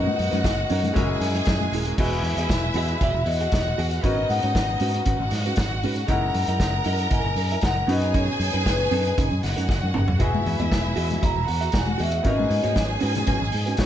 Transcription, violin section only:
0.00 0.93 F#4 medium
0.00 0.93 F#5 medium
0.96 1.96 G#4 medium
0.96 1.96 G#5 medium
1.98 3.24 E4 medium
1.98 3.24 E5 loud
3.26 4.02 F#4 medium
3.26 4.02 F#5 medium
4.03 5.04 D#4 medium
4.03 5.04 D#5 medium
5.06 6.07 F#4 medium
5.06 6.07 F#5 loud
6.08 7.85 A#4 medium
6.08 7.85 A#5 medium
7.88 9.39 G#4 loud
7.88 9.39 G#5 loud
9.43 10.18 F#4 medium
9.43 10.19 F#5 medium
10.20 11.45 E4 medium
10.20 11.45 E5 medium
11.47 12.23 F#4 medium
11.47 12.23 F#5 medium
12.25 13.86 G#4 medium
12.25 13.86 G#5 loud

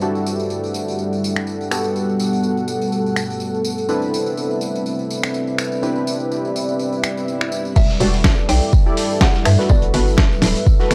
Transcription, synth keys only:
0.02 1.69 D4 medium
0.02 1.69 E4 medium
0.02 1.69 F#4 medium
0.02 1.69 G4 medium
0.02 1.69 A4 medium
1.71 3.86 B3 medium
1.71 3.86 F#4 medium
1.71 3.87 G4 medium
1.71 3.87 A4 medium
3.89 5.80 C4 medium
3.89 5.80 D4 medium
3.89 5.80 E4 medium
3.89 5.80 A4 medium
3.89 5.80 B4 medium
5.82 7.73 C4 medium
5.82 7.74 D4 medium
5.82 7.74 E4 medium
5.82 7.74 G4 medium
5.82 7.74 B4 medium
8.00 8.13 F#4 medium
8.00 8.13 G4 medium
8.00 8.13 A4 medium
8.00 8.13 D5 loud
8.86 9.43 E4 medium
8.86 9.43 G4 medium
8.86 9.43 A4 medium
8.86 9.43 D5 loud
9.59 9.91 F#4 medium
9.59 9.91 A4 medium
9.59 9.91 B4 medium
9.94 10.07 F#4 medium
9.94 10.07 A4 medium
9.94 10.07 B4 loud
10.80 10.95 F#4 medium
10.80 10.95 A4 medium
10.80 10.95 B4 loud

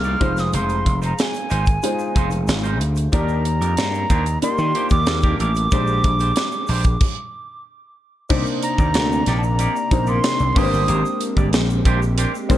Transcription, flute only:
0.00 0.41 F6 loud
0.40 0.55 D#6 medium
0.55 1.00 C6 medium
1.05 1.22 A#5 medium
1.21 2.82 G#5 medium
3.13 4.39 A#5 loud
4.43 4.88 C6 loud
4.92 5.36 D6 loud
5.41 7.63 D6 loud
8.63 9.33 A#5 medium
9.38 9.46 A5 medium
9.44 10.11 A#5 medium
10.09 10.59 C6 loud
10.58 11.22 D#6 loud

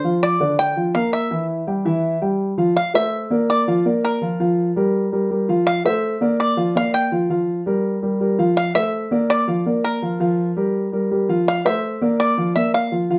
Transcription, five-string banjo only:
0.00 0.21 C5 medium
0.23 0.59 D5 medium
0.59 0.93 G5 loud
0.95 1.12 F5 medium
1.13 1.47 E5 medium
2.77 2.93 F5 loud
2.95 3.51 E5 loud
3.50 4.00 D5 loud
4.05 5.09 A#4 medium
5.67 5.85 F5 loud
5.86 6.36 E5 medium
6.40 6.77 D5 medium
6.77 6.93 F5 loud
6.94 7.99 G5 medium
8.57 8.74 F5 loud
8.75 9.30 E5 loud
9.30 9.80 D5 loud
9.84 10.89 A#4 medium
11.48 11.64 F5 loud
11.66 12.19 E5 loud
12.20 12.53 D5 loud
12.56 12.72 E5 medium
12.74 13.19 F5 medium

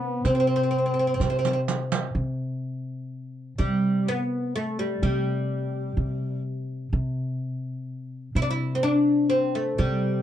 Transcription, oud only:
0.00 0.27 B3 medium
0.26 0.32 C4 medium
0.35 0.39 C4 medium
0.40 0.46 C4 medium
0.47 0.54 C4 soft
0.56 0.62 C4 medium
0.63 0.70 C4 soft
0.71 0.77 C4 medium
0.78 0.85 C4 soft
0.86 0.92 C4 soft
0.94 0.98 C4 soft
0.99 1.06 C4 medium
1.07 1.13 C4 soft
1.14 1.21 C4 medium
1.22 1.29 C4 soft
1.30 1.37 C4 medium
1.39 1.45 C4 medium
1.47 1.52 C4 medium
1.53 1.60 C4 soft
3.58 4.08 G3 medium
4.08 4.55 B3 loud
4.56 4.77 A3 medium
4.79 5.02 G3 medium
5.03 6.41 G3 medium
8.36 8.42 E4 medium
8.42 8.49 D4 medium
8.51 8.83 E4 medium
8.75 8.83 C4 medium
8.83 9.29 D4 medium
9.30 9.55 C4 medium
9.55 9.79 A3 medium
9.78 10.22 G3 medium

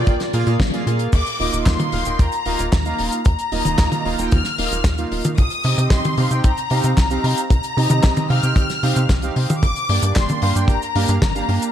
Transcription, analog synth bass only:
0.07 0.18 A#1 medium
0.34 0.44 A#2 medium
0.47 0.58 A#2 loud
0.60 0.71 A#1 medium
0.87 1.08 A#2 medium
1.13 1.24 D#2 medium
1.40 1.50 D#1 loud
1.53 1.64 D#1 loud
1.66 1.77 D#2 medium
1.93 2.04 D#1 loud
2.06 2.17 D#1 medium
2.19 2.30 D#2 medium
2.46 2.57 D#1 medium
2.59 2.70 D#1 loud
2.73 2.94 D#2 loud
2.99 3.10 D#1 medium
3.26 3.36 D#2 loud
3.52 3.63 D#1 loud
3.65 3.76 D#1 loud
3.79 3.90 D#2 medium
4.05 4.16 D#1 loud
4.18 4.29 D#1 medium
4.32 4.43 D#2 medium
4.58 4.69 D#1 medium
4.72 4.82 D#1 loud
4.84 5.06 D#2 loud
5.11 5.22 D#1 medium
5.38 5.49 C2 medium
5.64 5.75 C3 loud
5.78 5.89 C3 loud
5.90 6.01 C2 medium
6.18 6.28 C3 loud
6.31 6.42 C3 medium
6.44 6.55 C2 medium
6.71 6.81 C3 medium
6.84 6.95 C3 loud
6.97 7.19 C2 loud
7.24 7.35 C3 medium
7.50 7.61 C2 loud
7.77 7.88 C3 loud
7.90 8.01 C3 loud
8.04 8.14 C2 medium
8.30 8.41 C3 loud
8.43 8.54 C3 medium
8.56 8.67 C2 medium
8.83 8.94 C3 medium
8.96 9.07 C3 loud
9.09 9.31 C2 loud
9.36 9.47 C3 medium
9.63 9.74 G1 loud
9.89 10.00 G2 loud
10.02 10.13 G2 loud
10.16 10.27 G1 medium
10.42 10.53 G2 loud
10.56 10.66 G2 medium
10.68 10.79 G1 medium
10.95 11.06 G2 medium
11.09 11.19 G2 loud
11.22 11.43 G1 loud
11.49 11.59 G2 medium

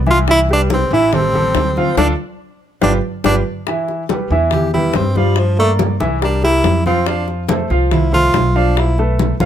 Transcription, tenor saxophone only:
0.10 0.19 F4 loud
0.31 0.40 E4 loud
0.53 0.62 D4 loud
0.73 0.92 C4 loud
0.93 1.15 E4 loud
1.14 1.97 C4 medium
1.97 2.08 D4 loud
2.83 2.93 D4 medium
3.25 3.35 D4 medium
4.53 4.72 G4 medium
4.74 4.97 E4 medium
4.95 5.18 C4 medium
5.17 5.40 G3 medium
5.39 5.59 F3 medium
5.60 5.72 A3 loud
6.24 6.43 D4 medium
6.44 6.83 E4 loud
6.86 7.09 C4 medium
7.07 7.28 D4 medium
7.92 8.12 E4 medium
8.14 8.58 F4 loud
8.56 8.80 D4 medium
8.79 8.99 E4 medium

